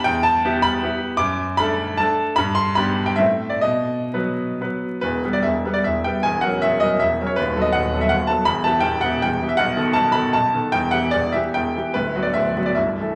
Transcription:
0.04 0.43 E2 medium
0.04 0.24 G5 loud
0.23 0.63 A5 loud
0.45 0.79 B3 medium
0.45 0.79 E4 medium
0.45 0.79 G4 medium
0.62 1.18 B5 loud
0.83 1.16 B3 medium
0.83 1.16 E4 medium
0.83 1.16 G4 medium
1.17 1.58 F#2 medium
1.17 1.58 D6 loud
1.57 1.96 A3 medium
1.57 1.96 D4 medium
1.57 1.96 A4 medium
1.57 1.99 B5 loud
1.98 2.34 A3 medium
1.98 2.35 D4 medium
1.98 2.35 A4 medium
1.98 2.37 A5 loud
2.36 2.77 G2 medium
2.36 2.57 B5 loud
2.55 2.76 C6 loud
2.75 3.14 B3 medium
2.75 3.15 D4 medium
2.75 3.15 G4 medium
2.75 3.07 B5 loud
3.06 3.18 G5 medium
3.16 3.61 A2 medium
3.16 3.58 A3 medium
3.16 3.59 C4 medium
3.16 3.59 E4 medium
3.16 3.50 E5 loud
3.50 3.62 D5 medium
3.61 4.11 B2 medium
3.61 4.59 D#5 medium
4.14 4.56 F#3 medium
4.14 4.56 B3 medium
4.14 4.56 B4 medium
4.61 4.99 F#3 soft
4.61 4.99 B3 medium
4.61 4.99 B4 medium
5.01 5.22 E1 medium
5.01 5.22 E2 medium
5.01 5.24 B4 medium
5.25 5.43 G3 soft
5.25 5.43 B3 soft
5.25 5.43 B4 medium
5.33 5.44 D5 medium
5.43 5.64 E1 medium
5.43 5.64 E2 medium
5.43 5.74 E5 medium
5.65 5.83 G3 soft
5.65 5.83 B3 soft
5.65 5.83 B4 medium
5.74 5.84 D5 medium
5.84 6.04 E1 medium
5.84 6.04 E2 medium
5.84 6.04 E5 medium
6.04 6.22 G3 soft
6.04 6.22 B3 soft
6.04 6.22 B4 soft
6.04 6.23 G5 medium
6.23 6.42 E1 medium
6.23 6.42 E2 medium
6.23 6.42 G#5 loud
6.41 6.60 F#3 medium
6.41 6.61 C#4 medium
6.41 6.61 A#4 medium
6.41 6.61 F#5 loud
6.62 6.82 E1 medium
6.62 6.82 E2 medium
6.62 6.82 E5 loud
6.80 6.99 F#3 soft
6.80 6.99 C#4 medium
6.80 7.00 A#4 medium
6.80 7.00 D#5 loud
7.00 7.19 E1 medium
7.00 7.19 E2 medium
7.00 7.28 E5 loud
7.21 7.36 F#3 soft
7.21 7.37 C#4 soft
7.21 7.37 A#4 soft
7.27 7.36 C#5 medium
7.36 7.56 D#1 medium
7.36 7.56 D#2 medium
7.36 7.64 B4 loud
7.56 7.73 F#3 medium
7.56 7.73 B3 soft
7.56 7.73 A4 medium
7.62 7.73 D#5 medium
7.72 7.93 D#1 medium
7.72 7.93 D#2 medium
7.72 8.03 F#5 loud
7.94 8.11 F#3 medium
7.94 8.11 B3 medium
7.94 8.11 A4 medium
8.01 8.12 E5 medium
8.09 8.29 D#1 medium
8.09 8.29 D#2 medium
8.09 8.29 F#5 loud
8.27 8.46 F#3 soft
8.27 8.46 B3 soft
8.27 8.46 A4 soft
8.27 8.46 A5 medium
8.45 8.65 E1 medium
8.45 8.65 E2 medium
8.45 8.65 B5 loud
8.64 8.83 E3 medium
8.64 8.83 B3 medium
8.64 8.84 G4 medium
8.64 8.84 A5 loud
8.80 9.03 E1 medium
8.80 9.03 E2 medium
8.80 9.03 G5 loud
9.01 9.21 E3 medium
9.01 9.21 B3 medium
9.01 9.22 G4 medium
9.01 9.22 F#5 loud
9.22 9.41 E1 medium
9.22 9.41 E2 medium
9.22 9.49 G5 loud
9.41 9.57 E3 medium
9.41 9.57 B3 soft
9.41 9.58 G4 medium
9.49 9.58 E5 medium
9.57 9.76 B1 medium
9.57 9.76 B2 medium
9.57 9.94 F#5 loud
9.76 9.93 D#3 medium
9.76 9.94 B3 medium
9.76 9.94 A4 medium
9.93 10.15 B1 medium
9.93 10.15 B2 medium
9.93 10.14 A5 loud
10.12 10.32 D#3 medium
10.12 10.32 B3 medium
10.12 10.33 A4 medium
10.12 10.33 B5 loud
10.33 10.53 B1 medium
10.33 10.54 B2 medium
10.33 10.72 A5 loud
10.54 10.71 D#3 soft
10.54 10.71 B3 soft
10.54 10.72 A4 medium
10.72 10.92 E1 medium
10.72 10.92 E2 medium
10.72 10.92 G5 loud
10.91 11.11 E3 medium
10.91 11.11 B3 medium
10.91 11.12 G4 medium
10.91 11.12 F#5 loud
11.11 11.33 E1 medium
11.11 11.33 E2 medium
11.11 11.33 D5 loud
11.32 11.52 E3 soft
11.32 11.53 B3 soft
11.32 11.53 G4 medium
11.32 11.53 E5 medium
11.54 11.74 E1 medium
11.54 11.74 E2 medium
11.54 11.93 G5 loud
11.76 11.93 E3 soft
11.76 11.93 B3 soft
11.76 11.93 G4 soft
11.94 12.13 D1 medium
11.94 12.13 D2 medium
11.94 12.23 B4 medium
12.15 12.33 F#3 soft
12.15 12.33 B3 medium
12.15 12.33 F#4 medium
12.23 12.33 D5 medium
12.34 12.55 D1 medium
12.34 12.55 D2 medium
12.34 12.65 E5 loud
12.56 12.74 F#3 soft
12.56 12.75 B3 soft
12.56 12.75 F#4 soft
12.66 12.76 D5 medium
12.75 12.98 C1 medium
12.75 12.97 C2 medium
12.75 13.15 E5 medium
13.00 13.15 E3 soft
13.00 13.15 A3 soft
13.00 13.15 A4 soft

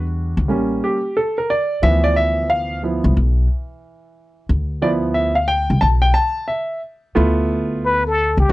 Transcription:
0.00 0.33 E2 medium
0.00 0.45 G3 soft
0.00 0.45 D4 soft
0.00 0.46 F#4 medium
0.37 0.49 D2 medium
0.48 0.79 A1 loud
0.48 0.97 G3 medium
0.48 0.97 A#3 medium
0.48 0.97 C#4 medium
0.84 1.14 G4 medium
1.17 1.36 A4 medium
1.38 1.50 A#4 medium
1.50 1.84 D5 medium
1.82 3.00 D2 loud
1.82 4.46 E3 medium
1.82 2.81 F3 medium
1.82 2.82 B3 medium
1.82 2.05 E5 loud
2.04 2.15 D5 medium
2.16 2.47 E5 loud
2.50 2.81 F5 loud
2.83 3.13 F3 soft
2.83 3.13 B3 soft
2.83 3.14 E4 medium
3.04 3.15 C2 medium
3.17 3.46 B1 medium
4.49 5.66 D2 medium
4.82 5.30 F3 medium
4.82 5.30 B3 medium
4.82 5.30 E4 medium
4.82 4.90 D5 medium
5.14 5.37 E5 medium
5.35 5.49 F5 medium
5.48 5.83 G5 loud
5.70 5.81 C2 medium
5.81 6.12 B1 loud
5.81 5.86 A5 loud
6.02 6.15 G5 loud
6.14 6.49 A5 loud
6.48 6.80 E5 medium
7.15 8.33 D2 medium
7.15 8.00 A3 medium
7.15 8.01 B3 medium
7.15 8.01 E4 medium
7.15 8.01 F4 medium
7.86 8.04 B4 loud
8.07 8.36 A4 medium
8.37 8.48 C2 medium
8.37 8.53 G4 medium
8.49 8.53 B1 loud
8.49 8.53 A3 medium
8.49 8.53 C4 medium

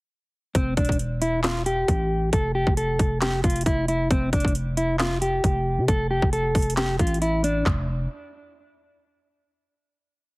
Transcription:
0.55 0.76 F1 loud
0.55 0.74 C4 loud
0.55 kick loud
0.55 closed hi-hat medium
0.77 1.84 E1 loud
0.77 0.96 D4 medium
0.77 kick loud
0.77 closed hi-hat medium
0.85 closed hi-hat medium
0.89 kick loud
0.89 closed hi-hat medium
0.99 closed hi-hat medium
1.22 1.41 E4 medium
1.22 closed hi-hat medium
1.44 1.63 F4 medium
1.44 snare loud
1.44 clap medium
1.44 closed hi-hat medium
1.66 2.29 G4 medium
1.66 closed hi-hat medium
1.88 2.31 A1 loud
1.88 kick medium
1.88 closed hi-hat medium
2.33 2.65 F1 loud
2.33 2.52 A4 loud
2.33 kick loud
2.33 closed hi-hat medium
2.55 2.74 G4 medium
2.67 2.98 F1 loud
2.67 kick loud
2.77 3.19 A4 medium
2.77 closed hi-hat medium
2.99 3.42 F1 loud
2.99 kick medium
2.99 closed hi-hat medium
3.21 3.41 G4 medium
3.21 snare loud
3.21 clap medium
3.21 closed hi-hat medium
3.44 3.65 F1 loud
3.44 3.63 F4 medium
3.44 kick loud
3.44 closed hi-hat medium
3.50 closed hi-hat medium
3.56 closed hi-hat medium
3.61 closed hi-hat medium
3.66 4.09 F1 loud
3.66 3.85 E4 medium
3.66 kick medium
3.66 closed hi-hat medium
3.88 4.08 E4 medium
3.88 closed hi-hat medium
4.11 4.32 F1 loud
4.11 4.30 C4 loud
4.11 kick loud
4.11 closed hi-hat medium
4.33 4.44 F1 loud
4.33 4.52 D4 medium
4.33 kick loud
4.33 closed hi-hat medium
4.40 closed hi-hat medium
4.45 5.40 F1 loud
4.45 kick loud
4.45 closed hi-hat medium
4.55 closed hi-hat medium
4.77 4.96 E4 medium
4.77 closed hi-hat medium
4.99 5.19 F4 medium
4.99 snare loud
4.99 clap medium
4.99 closed hi-hat medium
5.22 5.84 G4 medium
5.22 closed hi-hat medium
5.44 5.79 F1 loud
5.44 kick medium
5.44 closed hi-hat medium
5.78 5.88 C3 loud
5.88 6.21 F1 loud
5.88 6.08 A4 loud
5.88 kick loud
5.88 closed hi-hat medium
6.11 6.30 G4 medium
6.22 6.54 F1 loud
6.22 kick loud
6.33 6.75 A4 medium
6.33 closed hi-hat medium
6.55 6.98 F1 loud
6.55 kick medium
6.55 closed hi-hat soft
6.55 open hi-hat medium
6.62 closed hi-hat medium
6.70 closed hi-hat medium
6.77 6.97 G4 medium
6.77 snare loud
6.77 clap medium
6.77 closed hi-hat medium
6.99 7.63 A1 loud
6.99 7.19 F4 medium
6.99 kick medium
6.99 closed hi-hat medium
7.07 closed hi-hat medium
7.14 closed hi-hat soft
7.22 7.41 E4 medium
7.22 closed hi-hat medium
7.44 7.63 D4 medium
7.44 closed hi-hat medium
7.66 8.07 F1 loud
7.66 kick loud
7.66 clap medium
7.66 floor tom loud

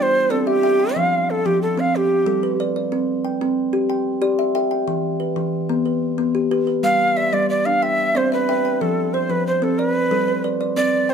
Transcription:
0.00 0.32 C5 medium
0.00 0.46 G5 medium
0.30 0.63 C4 medium
0.30 0.48 A4 medium
0.30 0.79 D5 medium
0.47 0.98 G4 loud
0.47 0.62 E5 medium
0.63 0.96 E5 medium
0.63 0.78 G5 medium
0.80 1.12 G5 medium
0.96 1.29 F3 medium
0.96 1.32 F5 medium
1.30 1.47 A4 medium
1.46 1.78 F3 medium
1.46 1.62 G4 medium
1.62 1.81 A4 medium
1.78 1.94 C4 medium
1.78 1.98 F5 medium
1.96 2.60 G4 medium
2.26 2.59 G3 medium
2.26 2.76 A4 medium
2.43 2.59 B4 medium
2.60 2.92 B4 medium
2.60 2.75 D5 medium
2.76 3.09 D5 medium
2.92 3.25 C4 medium
3.25 3.74 G5 medium
3.41 3.74 C4 medium
3.73 4.06 G4 medium
3.90 4.39 G5 medium
4.22 4.55 G4 medium
4.22 4.71 D5 medium
4.39 4.54 E5 medium
4.55 4.88 E5 medium
4.55 4.70 G5 medium
4.71 5.04 G5 medium
4.88 5.21 E3 medium
5.20 5.69 B4 medium
5.36 5.69 E3 medium
5.69 6.02 B3 medium
5.86 6.35 B4 medium
6.18 6.51 B3 medium
6.35 6.50 G4 medium
6.51 6.84 G4 medium
6.51 6.66 B4 medium
6.67 7.00 B4 medium
6.83 7.17 G3 medium
6.83 7.18 F5 loud
7.17 7.66 D5 medium
7.17 7.35 E5 loud
7.33 7.66 G3 medium
7.33 7.49 D5 loud
7.50 7.67 D5 medium
7.66 7.83 D4 medium
7.66 7.84 F5 medium
7.82 8.18 E5 loud
7.82 8.32 G5 medium
8.15 8.48 C4 medium
8.15 8.32 C5 medium
8.15 8.64 D5 medium
8.32 8.83 B4 medium
8.32 8.48 E5 medium
8.49 8.81 E5 medium
8.49 8.64 G5 medium
8.65 8.97 G5 medium
8.81 9.14 F3 medium
8.81 9.15 A4 medium
9.14 9.32 C5 medium
9.14 9.63 C5 medium
9.30 9.62 F3 medium
9.30 9.46 B4 medium
9.47 9.65 C5 medium
9.62 9.79 C4 medium
9.62 9.80 A4 medium
9.79 10.44 B4 medium
9.79 10.28 D5 medium
10.11 10.44 G3 medium
10.11 10.60 A4 medium
10.28 10.43 B4 medium
10.44 10.77 B4 medium
10.44 10.59 D5 medium
10.61 10.93 D5 medium
10.77 11.09 C4 medium
10.77 11.12 D5 loud
11.09 11.14 C5 loud
11.09 11.14 G5 medium

